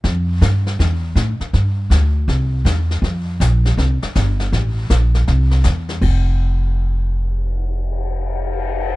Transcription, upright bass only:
X:1
M:4/4
L:1/8
Q:"Swing" 1/4=160
K:F
V:1 name="Upright bass" clef=bass
F,,2 G,,2 E,,2 A,, z | G,,2 D,,2 C,,2 E,,2 | F,,2 B,,,2 C,, z G,,,2 | A,,,2 B,,,2 C,,2 E,,2 |
F,,,8- | F,,,8 |]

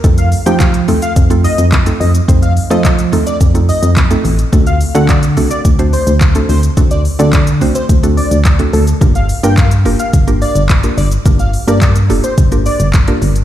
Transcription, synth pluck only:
X:1
M:4/4
L:1/16
Q:1/4=107
K:Gm
V:1 name="Synth pluck"
[A,CEFA]2 z [A,CEFG]2 z [A,CEFA]2 z [A,CEFA]3 z [A,CEFA]2 z | [A,CEFc]2 z [A,CEFA]2 z [A,CEFA]2 z [A,CEFA]3 z [A,CEFA]2 z | [A,CD^FA]2 z [A,CDFA]2 z [A,CDFA]2 z [A,CDFc]3 z [A,CDFA]2 z | [A,CD^FA]2 z [A,CDFA]2 z [A,CDFc]2 z [A,CDFA]3 z [A,CDFA]2 z |
[B,DFGB]2 z [B,DFGB]2 z [B,DFGB]2 z [B,DFGB]3 z [B,DFGB]2 z | [B,DFGB]2 z [B,DFGB]2 z [B,DFGA]2 z [B,DFGB]3 z [B,DFGB]2 z |]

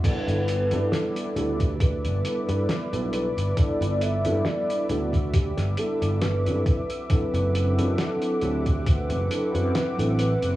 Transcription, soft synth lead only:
X:1
M:4/4
L:1/16
Q:"Swing 16ths" 1/4=68
K:G
V:1 name="Soft synth lead"
B4 A2 G2 B6 B2 | d2 e2 d2 F2 G2 A2 B3 z | B4 A2 G2 B6 B2 |]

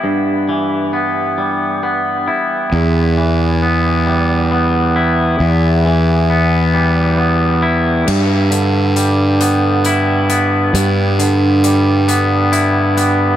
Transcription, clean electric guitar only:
X:1
M:6/8
L:1/8
Q:3/8=45
K:G
V:1 name="Clean electric guitar"
[G,,G,B,E] E, B, G, B, E | E,, E, B, G, B, E | E,, E, B, G, B, E | G,, D, G, B, E B, |
G,, D, G, B, E B, |]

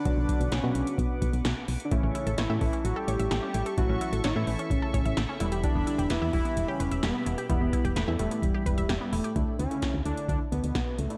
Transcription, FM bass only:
X:1
M:4/4
L:1/16
Q:1/4=129
K:D
V:1 name="FM bass" clef=bass
B,,, B,,, z B,,, B,,, B,, B,,, z B,,, z B,,, B,,, B,,, z B,,, z | A,,, A,,, z A,,, A,,, A,, A,,, z A,,, z A,,, A,,, A,,, z A,,, z | A,,, A,,, z A,,, A,,, A,, A,,, z A,,, z A,,, A,,, A,,, z E,,,2- | E,,, E,,, z E,,, E,,, E,, E,,, z E,,, z E,,, E,,, E,,, z E,,, z |
E,,, E,,, z E,,, E,,, E,, E,,, z E,,, z E,,, E,,, E,,, z E,,, z | D,, z D,, z2 D,, D,, z D,, z D,, D,, B,,, z C,, z |]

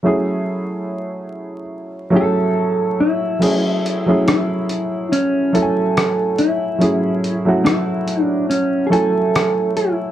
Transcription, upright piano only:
X:1
M:4/4
L:1/16
Q:"Swing 16ths" 1/4=71
K:F#m
V:1 name="Upright piano"
[F,A,CEG]6- [F,A,CEG] z3 [F,A,CEGA]4- [F,A,CEGA] z | [F,A,CEG]3 [F,A,CEG]6 z [F,A,CEFg]4- [F,A,CEFg] z | [F,A,CEG]3 [F,A,CEF]6 z [F,A,CEg]4- [F,A,CEg] z |]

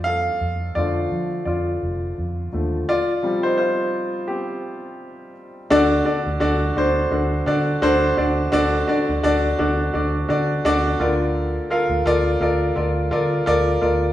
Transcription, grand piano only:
X:1
M:4/4
L:1/16
Q:"Swing 16ths" 1/4=85
K:Dphr
V:1 name="Grand piano"
[Af]4 [Fd]4 [Fd]6 z2 | [Fd]3 [Ec] [Fc]4 [CG]6 z2 | [D^FAd]2 [DFAd]2 [DFAd]2 [DFAc]2 [DFAc]2 [DFAd]2 [DFAc]2 [DFAd]2 | [D^FAd]2 [DFAd]2 [DFAd]2 [DFAd]2 [DFAd]2 [DFAd]2 [DFAd]2 [=FABd]2- |
[FABd]2 [FABf]2 [FABd]2 [FABd]2 [FABd]2 [FABd]2 [FABd]2 [FABd]2 |]
V:2 name="Grand piano" clef=bass
z4 [D,F,A,]2 z8 [D,F,A,]2 | z2 [C,F,G,]12- [C,F,G,]2 | D,6 z8 z2 | D,6 z8 D,2- |
D,4 z12 |]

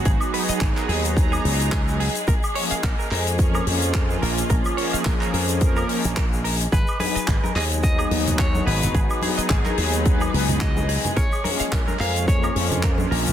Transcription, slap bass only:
X:1
M:4/4
L:1/16
Q:"Swing 16ths" 1/4=108
K:G#dor
V:1 name="Slap bass" clef=bass
G,,, z3 G,,, z D,,3 z C,,4 z2 | A,,, z3 A,,, z E,,3 z E,,3 z A,,, z | A,,, z3 A,,, z E,,3 z2 A,,,4 z | G,,, z3 G,,, z D,,3 z D,,3 z G,,, z |
G,,, z3 G,,, z D,,3 z C,,4 z2 | A,,, z3 A,,, z E,,3 z E,,3 z A,,, z |]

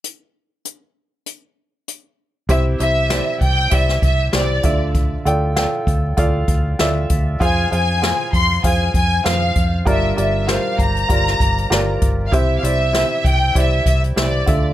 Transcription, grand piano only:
X:1
M:4/4
L:1/8
Q:"Swing 16ths" 1/4=98
K:Cmix
V:1 name="Grand piano"
z8 | [EGce] [EGce] [EGcd] z [EGcd] z [EGcd] [FAde]- | [FAde] [FAdg] [FAdg] z [FAdf] z [FAde] z | [F_Acf] [FAcf] [FAcf] z [FAcf] z [FAcf] z |
[FGBd] [FGBd] [FGBc] z [FGBd] z [FGBd] z | [EGce] [EGcd] [EGce] z [EGcd] z [EGce] [FAde] |]
V:2 name="Grand piano" clef=bass
z8 | C,3 z4 D,- | D,2 z6 | z8 |
G,,3 z4 z | C,3 z4 D, |]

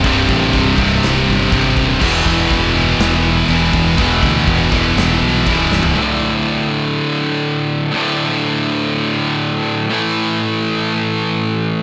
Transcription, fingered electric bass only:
X:1
M:4/4
L:1/8
Q:1/4=122
K:Dmix
V:1 name="Fingered electric bass" clef=bass
C,,, A,,, C,,, C,,, C,,, G,,, G,,, ^D,,, | E,,, E,,, E,,,2 E,,,2 E,,, E,,, | E,,, D,, E,,, E,,, E,,, B,,, B,,,, C,,, | z8 |
z8 | z8 |]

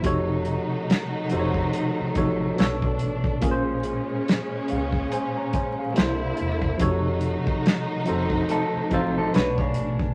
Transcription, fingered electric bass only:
X:1
M:4/4
L:1/16
Q:"Swing 16ths" 1/4=71
K:Fphr
V:1 name="Fingered electric bass" clef=bass
F,,,3 z3 F,,,2 z2 =A,,,2 =B,,, B,,, A,,,2 | B,,,3 z3 D,,2 z4 C,,2 =E,,,2 | F,,,3 z3 F,,,2 z2 =A,,,2 =B,,, B,,, A,,,2 |]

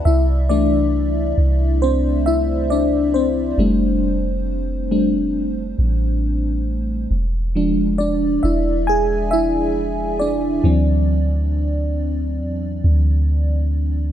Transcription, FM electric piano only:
X:1
M:4/4
L:1/16
Q:1/4=68
K:Clyd
V:1 name="FM electric piano"
[Ee]2 [Dd]6 [Cc]2 [Ee]2 [Dd]2 [Cc]2- | [Cc]4 z12 | z4 [Dd]2 [Ee]2 [^G^g]2 [Ee]4 [Dd]2- | [Dd]2 z12 z2 |]
V:2 name="FM electric piano"
d z [E,A,D]6 z8 | [G,A,D]6 [G,A,D]2 z8 | z2 [=F,^G,D]2 z12 | [E,F,C]6 z8 z2 |]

